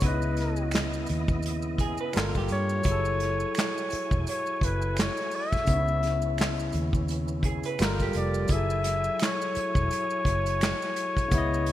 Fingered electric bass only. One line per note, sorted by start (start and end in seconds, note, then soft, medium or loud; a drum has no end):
0.03 1.04 C#2 loud
1.10 1.96 D#2 medium
2.16 2.32 G1 loud
2.36 2.48 G1 medium
2.51 2.80 G2 loud
2.86 3.43 F#1 medium
3.93 muted fingered electric bass stroke soft
4.12 4.24 E1 medium
4.62 5.08 F#1 medium
5.68 6.70 C#2 medium
6.74 7.61 D#2 loud
7.80 8.09 G1 loud
8.15 8.44 F1 medium
8.50 9.08 F#1 medium
9.57 muted fingered electric bass stroke soft
9.76 9.88 E1 medium
10.26 10.72 F#1 medium
11.32 11.72 C#2 loud